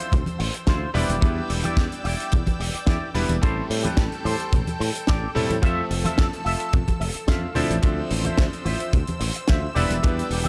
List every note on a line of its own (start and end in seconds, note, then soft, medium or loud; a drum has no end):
0.00 0.91 F3 medium
0.00 0.92 C4 medium
0.00 0.92 D4 medium
0.00 0.12 E4 medium
0.00 0.13 F4 medium
0.00 0.92 A4 medium
0.00 0.13 C5 loud
0.00 0.93 C5 medium
0.00 0.92 E5 medium
0.00 0.92 E6 medium
0.12 0.22 D2 medium
0.12 kick loud
0.12 closed hi-hat medium
0.12 low conga medium
0.26 closed hi-hat soft
0.26 high conga medium
0.39 0.49 A1 medium
0.39 muted clean electric guitar stroke loud
0.39 open hi-hat loud
0.54 muted clean electric guitar stroke soft
0.54 closed hi-hat medium
0.67 0.85 D2 loud
0.67 0.88 E4 medium
0.67 0.89 F4 medium
0.67 0.89 C5 medium
0.67 kick loud
0.67 snare loud
0.67 closed hi-hat medium
0.67 high conga medium
0.94 1.04 E1 medium
0.94 1.13 G3 medium
0.94 1.14 B3 medium
0.94 1.14 D4 medium
0.94 1.14 E4 medium
0.94 1.50 E4 medium
0.94 1.50 G4 medium
0.94 1.14 B4 medium
0.94 3.40 D5 medium
0.94 1.51 D5 loud
0.94 3.40 G5 medium
0.94 3.40 E6 medium
0.94 open hi-hat medium
0.94 low conga medium
1.09 1.17 E1 medium
1.09 closed hi-hat medium
1.09 high conga medium
1.21 1.40 E2 medium
1.21 3.11 G3 medium
1.21 3.12 B3 medium
1.21 3.12 D4 medium
1.21 3.12 E4 medium
1.21 3.12 B4 medium
1.21 kick loud
1.21 closed hi-hat medium
1.50 1.64 E1 medium
1.50 open hi-hat loud
1.63 1.84 E4 medium
1.63 1.85 G4 medium
1.63 1.85 D5 medium
1.63 muted fingered electric bass stroke soft
1.63 closed hi-hat medium
1.63 high conga medium
1.77 1.86 E2 medium
1.77 kick loud
1.77 snare loud
1.77 closed hi-hat medium
1.92 closed hi-hat soft
2.04 2.14 E1 medium
2.04 2.32 E4 medium
2.04 2.33 G4 medium
2.04 2.33 D5 medium
2.04 open hi-hat medium
2.20 closed hi-hat medium
2.32 2.42 E2 medium
2.32 kick loud
2.32 closed hi-hat medium
2.32 low conga medium
2.47 kick medium
2.47 closed hi-hat medium
2.47 high conga medium
2.59 2.69 E1 medium
2.59 muted clean electric guitar stroke loud
2.59 open hi-hat loud
2.73 muted clean electric guitar stroke soft
2.73 muted fingered electric bass stroke soft
2.73 closed hi-hat medium
2.86 2.96 E2 medium
2.86 3.08 E4 medium
2.86 3.09 G4 medium
2.86 3.09 D5 medium
2.86 kick loud
2.86 snare loud
2.86 closed hi-hat medium
2.86 high conga medium
3.14 3.24 E1 medium
3.14 3.34 G3 medium
3.14 3.34 B3 medium
3.14 3.34 D4 medium
3.14 3.34 E4 medium
3.14 3.34 B4 medium
3.14 open hi-hat medium
3.14 low conga medium
3.29 3.38 E1 medium
3.29 muted clean electric guitar stroke soft
3.29 closed hi-hat medium
3.29 high conga medium
3.41 3.60 A1 loud
3.41 5.32 G3 medium
3.41 5.32 A3 medium
3.41 5.32 C4 medium
3.41 5.32 E4 medium
3.41 3.63 G4 loud
3.41 5.61 A4 medium
3.41 3.64 A4 loud
3.41 5.33 A4 medium
3.41 3.64 C5 loud
3.41 5.61 G5 medium
3.41 kick loud
3.41 closed hi-hat medium
3.70 3.87 A2 medium
3.70 open hi-hat loud
3.83 4.04 G4 medium
3.83 4.05 A4 medium
3.83 4.05 B4 medium
3.83 closed hi-hat medium
3.83 high conga medium
3.97 4.06 A1 medium
3.97 kick loud
3.97 snare loud
3.97 closed hi-hat medium
4.12 closed hi-hat soft
4.24 4.34 A2 medium
4.24 4.52 G4 medium
4.24 4.53 A4 medium
4.24 4.53 C5 medium
4.24 open hi-hat medium
4.24 high conga medium
4.40 closed hi-hat medium
4.52 4.62 A1 medium
4.52 kick loud
4.52 closed hi-hat medium
4.52 low conga medium
4.67 closed hi-hat medium
4.67 high conga medium
4.79 4.89 A2 medium
4.79 muted clean electric guitar stroke loud
4.79 open hi-hat loud
4.94 muted clean electric guitar stroke soft
4.94 closed hi-hat medium
5.07 5.26 A1 loud
5.07 5.29 G4 medium
5.07 5.29 A4 medium
5.07 5.30 D5 medium
5.07 kick loud
5.07 snare loud
5.07 closed hi-hat medium
5.07 high conga medium
5.35 5.44 A2 medium
5.35 5.54 G3 medium
5.35 5.54 A3 medium
5.35 5.54 C4 medium
5.35 5.55 E4 medium
5.35 5.55 A4 medium
5.35 open hi-hat medium
5.35 low conga medium
5.49 5.58 A2 medium
5.49 muted clean electric guitar stroke soft
5.49 closed hi-hat medium
5.49 high conga medium
5.62 5.80 F2 medium
5.62 7.52 F3 medium
5.62 7.52 A3 medium
5.62 7.52 C4 medium
5.62 5.84 F4 loud
5.62 5.84 A4 medium
5.62 7.53 A4 medium
5.62 7.54 A4 medium
5.62 7.53 E5 medium
5.62 5.85 E5 loud
5.62 7.54 E6 medium
5.62 kick loud
5.62 closed hi-hat medium
5.91 6.04 F1 medium
5.91 open hi-hat loud
6.04 6.25 F4 medium
6.04 6.25 A4 medium
6.04 6.26 E5 medium
6.04 muted fingered electric bass stroke soft
6.04 closed hi-hat medium
6.04 high conga loud
6.18 6.27 F2 medium
6.18 kick loud
6.18 snare loud
6.18 closed hi-hat medium
6.33 closed hi-hat soft
6.45 6.55 F1 medium
6.45 6.73 F4 medium
6.45 6.73 A4 medium
6.45 6.74 E5 loud
6.45 open hi-hat medium
6.60 closed hi-hat medium
6.73 6.82 F2 medium
6.73 kick loud
6.73 closed hi-hat medium
6.73 low conga medium
6.88 kick medium
6.88 closed hi-hat medium
6.88 high conga medium
7.00 7.10 F1 medium
7.00 7.03 E5 medium
7.00 muted clean electric guitar stroke loud
7.00 open hi-hat loud
7.14 muted clean electric guitar stroke soft
7.14 muted fingered electric bass stroke soft
7.14 closed hi-hat medium
7.27 7.46 F2 loud
7.27 7.49 F4 medium
7.27 7.49 A4 medium
7.27 7.49 E5 loud
7.27 7.54 F5 medium
7.27 kick loud
7.27 snare loud
7.27 closed hi-hat medium
7.27 high conga medium
7.54 7.65 D2 medium
7.54 7.74 F3 medium
7.54 7.75 C4 medium
7.54 7.75 D4 medium
7.54 7.75 E4 medium
7.54 8.10 F4 medium
7.54 7.75 A4 medium
7.54 8.11 C5 medium
7.54 9.74 C5 medium
7.54 8.11 E5 loud
7.54 7.81 A5 medium
7.54 10.48 E6 medium
7.54 open hi-hat medium
7.54 low conga medium
7.70 7.78 A1 medium
7.70 closed hi-hat medium
7.70 high conga medium
7.82 8.01 D2 medium
7.82 9.72 F3 medium
7.82 9.72 C4 medium
7.82 9.73 D4 medium
7.82 9.73 A4 medium
7.82 9.73 E5 medium
7.82 kick loud
7.82 closed hi-hat medium
8.10 8.28 A1 medium
8.10 open hi-hat loud
8.24 8.45 F4 medium
8.24 8.45 C5 medium
8.24 8.46 E5 medium
8.24 closed hi-hat medium
8.24 high conga medium
8.38 8.47 D2 medium
8.38 kick loud
8.38 snare loud
8.38 closed hi-hat medium
8.53 closed hi-hat soft
8.65 8.74 A1 medium
8.65 8.93 F4 medium
8.65 8.93 C5 medium
8.65 8.94 E5 loud
8.65 open hi-hat medium
8.65 high conga medium
8.80 closed hi-hat medium
8.93 9.02 D2 medium
8.93 kick loud
8.93 closed hi-hat medium
8.93 low conga medium
9.07 closed hi-hat medium
9.07 high conga medium
9.20 9.30 A1 medium
9.20 muted clean electric guitar stroke loud
9.20 open hi-hat loud
9.34 muted clean electric guitar stroke soft
9.34 closed hi-hat medium
9.47 9.66 D2 loud
9.47 9.69 F4 medium
9.47 9.69 C5 medium
9.47 9.70 E5 medium
9.47 kick loud
9.47 snare loud
9.47 closed hi-hat medium
9.47 high conga medium
9.75 9.85 E1 medium
9.75 9.95 G3 medium
9.75 9.95 B3 medium
9.75 9.95 D4 medium
9.75 9.95 E4 medium
9.75 10.30 G4 medium
9.75 9.95 B4 medium
9.75 10.48 D5 medium
9.75 10.31 D5 medium
9.75 10.31 E5 loud
9.75 10.48 G5 medium
9.75 open hi-hat medium
9.75 low conga medium
9.90 9.98 E1 medium
9.90 closed hi-hat medium
9.90 high conga medium
10.03 10.21 E2 loud
10.03 10.48 G3 medium
10.03 10.48 B3 medium
10.03 10.48 D4 medium
10.03 10.48 E4 medium
10.03 10.48 B4 medium
10.03 kick loud
10.03 closed hi-hat medium
10.19 closed hi-hat medium
10.30 10.44 E1 medium
10.30 open hi-hat loud
10.44 10.48 G4 medium
10.44 10.48 D5 medium
10.44 muted fingered electric bass stroke soft
10.44 closed hi-hat medium
10.44 high conga medium